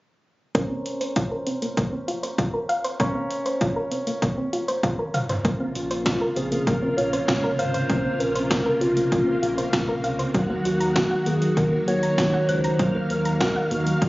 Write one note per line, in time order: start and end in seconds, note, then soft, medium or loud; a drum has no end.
0.55 0.65 A#3 medium
0.55 2.96 C#4 medium
0.55 2.96 A#4 medium
0.55 2.96 C5 medium
0.55 kick loud
0.55 closed hi-hat medium
0.70 0.80 C4 medium
0.86 closed hi-hat medium
1.01 1.11 C5 medium
1.01 closed hi-hat soft
1.16 1.26 F4 medium
1.16 kick loud
1.16 closed hi-hat medium
1.31 1.42 A#4 medium
1.47 1.57 C4 medium
1.47 closed hi-hat medium
1.62 1.72 A#3 medium
1.62 closed hi-hat soft
1.77 1.88 A#3 medium
1.77 kick loud
1.77 closed hi-hat medium
1.93 2.03 C4 medium
2.08 2.18 F4 medium
2.08 closed hi-hat medium
2.23 2.33 C5 medium
2.23 closed hi-hat soft
2.38 2.49 F4 medium
2.38 kick loud
2.38 closed hi-hat medium
2.54 2.64 A#4 medium
2.69 2.79 F5 loud
2.69 closed hi-hat medium
2.84 2.95 C5 medium
2.84 closed hi-hat soft
3.00 3.10 A#3 medium
3.00 5.41 C#4 medium
3.00 5.41 A#4 medium
3.00 5.41 C#5 medium
3.00 kick loud
3.00 closed hi-hat medium
3.15 3.25 C4 medium
3.31 closed hi-hat medium
3.46 3.56 C5 medium
3.46 closed hi-hat soft
3.61 3.71 F4 medium
3.61 kick loud
3.61 closed hi-hat medium
3.76 3.87 A#4 medium
3.92 4.02 C4 medium
3.92 closed hi-hat medium
4.07 4.17 A#3 medium
4.07 closed hi-hat soft
4.22 4.33 A#3 medium
4.22 kick loud
4.22 closed hi-hat medium
4.38 4.48 C4 medium
4.53 4.63 F4 medium
4.53 closed hi-hat medium
4.68 4.78 C5 medium
4.68 closed hi-hat soft
4.83 4.94 F4 medium
4.83 kick loud
4.83 closed hi-hat medium
4.83 high tom soft
4.99 5.09 A#4 medium
5.14 5.24 F5 medium
5.14 closed hi-hat medium
5.14 mid tom medium
5.29 5.40 C5 medium
5.29 closed hi-hat soft
5.29 floor tom medium
5.44 5.66 A#1 loud
5.44 10.30 C3 medium
5.44 10.30 C#3 medium
5.44 14.09 A#3 medium
5.44 5.55 A#3 medium
5.44 10.30 F4 medium
5.44 kick loud
5.44 closed hi-hat medium
5.60 5.70 C4 medium
5.75 6.08 A#1 loud
5.75 6.04 F4 medium
5.75 closed hi-hat medium
5.91 6.01 C5 medium
5.91 closed hi-hat soft
6.06 6.38 F4 medium
6.06 6.16 F4 medium
6.06 kick loud
6.06 snare loud
6.06 closed hi-hat medium
6.21 6.32 A#4 medium
6.36 6.58 A#1 medium
6.36 6.47 C4 medium
6.36 6.66 G#4 loud
6.36 closed hi-hat medium
6.52 6.62 A#3 medium
6.52 closed hi-hat medium
6.67 6.88 A#1 loud
6.67 6.78 A#3 medium
6.67 6.95 A#4 loud
6.67 kick loud
6.67 closed hi-hat medium
6.82 6.93 C4 medium
6.97 7.19 A#1 loud
6.97 7.08 F4 medium
6.97 7.55 C#5 loud
6.97 closed hi-hat medium
7.13 7.23 C5 medium
7.13 closed hi-hat soft
7.28 7.50 A#1 loud
7.28 7.39 F4 medium
7.28 kick loud
7.28 snare loud
7.28 closed hi-hat medium
7.44 7.54 A#4 medium
7.58 7.80 G#1 medium
7.58 8.21 C5 loud
7.58 7.69 F5 medium
7.58 closed hi-hat medium
7.74 7.85 C5 medium
7.74 closed hi-hat medium
7.90 8.11 A#1 loud
7.90 8.00 A#3 medium
7.90 kick loud
7.90 closed hi-hat medium
8.05 8.15 C4 medium
8.20 8.52 A#1 loud
8.20 8.50 A#4 loud
8.20 closed hi-hat medium
8.35 8.46 C5 medium
8.35 closed hi-hat soft
8.50 8.61 F4 medium
8.50 8.82 A#4 medium
8.50 kick loud
8.50 snare loud
8.50 closed hi-hat medium
8.66 8.76 A#4 medium
8.81 9.03 A#1 loud
8.81 8.92 C4 medium
8.81 9.11 F4 medium
8.81 closed hi-hat medium
8.97 9.07 A#3 medium
8.97 closed hi-hat medium
9.12 9.33 A#1 loud
9.12 9.22 A#3 medium
9.12 10.00 F4 medium
9.12 kick loud
9.12 closed hi-hat medium
9.27 9.38 C4 medium
9.42 9.64 A#1 loud
9.42 9.53 F4 medium
9.42 closed hi-hat medium
9.58 9.68 C5 medium
9.58 closed hi-hat soft
9.73 10.05 A#1 loud
9.73 9.83 F4 medium
9.73 kick loud
9.73 snare loud
9.73 closed hi-hat medium
9.88 9.99 A#4 medium
10.04 10.25 C#2 medium
10.04 10.14 F5 medium
10.04 closed hi-hat medium
10.19 10.29 C5 medium
10.19 closed hi-hat soft
10.34 10.56 D#2 loud
10.34 14.09 D#3 medium
10.34 10.45 F#3 medium
10.34 14.09 F#3 medium
10.34 12.77 F#4 medium
10.34 kick loud
10.34 closed hi-hat medium
10.50 10.60 A#3 medium
10.65 10.97 D#2 loud
10.65 10.94 F#4 medium
10.65 closed hi-hat medium
10.80 10.91 A#5 medium
10.80 closed hi-hat soft
10.96 11.06 F#4 medium
10.96 11.28 F#4 medium
10.96 kick loud
10.96 snare loud
10.96 closed hi-hat medium
11.11 11.21 F#5 medium
11.26 11.48 D#2 loud
11.26 11.37 A#3 medium
11.26 11.58 G#4 loud
11.26 closed hi-hat medium
11.42 11.52 F#3 medium
11.42 closed hi-hat medium
11.57 11.78 D#2 loud
11.57 11.67 F#3 medium
11.57 11.87 A#4 loud
11.57 kick loud
11.57 closed hi-hat medium
11.72 11.83 A#3 medium
11.88 12.09 D#2 loud
11.88 11.98 F#4 medium
11.88 12.50 C#5 loud
11.88 closed hi-hat medium
12.03 12.13 A#5 medium
12.03 closed hi-hat soft
12.18 12.39 D#2 medium
12.18 12.29 F#4 medium
12.18 kick loud
12.18 snare loud
12.18 closed hi-hat medium
12.34 12.44 F#5 medium
12.49 12.70 C#2 medium
12.49 13.12 C5 loud
12.49 12.59 F#6 medium
12.49 closed hi-hat medium
12.64 12.74 A#5 medium
12.64 closed hi-hat medium
12.79 13.01 D#2 loud
12.79 12.90 F#3 medium
12.79 14.09 F5 medium
12.79 kick loud
12.79 closed hi-hat medium
12.95 13.05 A#3 medium
13.10 13.42 D#2 medium
13.10 13.40 A#4 medium
13.10 closed hi-hat medium
13.25 13.36 A#5 medium
13.25 closed hi-hat soft
13.41 13.51 F#4 medium
13.41 13.69 A#4 medium
13.41 kick loud
13.41 snare loud
13.41 closed hi-hat medium
13.56 13.66 F#5 medium
13.71 13.93 D#2 loud
13.71 13.82 A#3 medium
13.71 14.00 F#4 medium
13.71 closed hi-hat medium
13.87 13.97 F#3 medium
13.87 closed hi-hat medium
14.02 14.09 D#2 loud
14.02 14.09 F#3 medium
14.02 14.09 F#4 medium
14.02 kick loud
14.02 closed hi-hat medium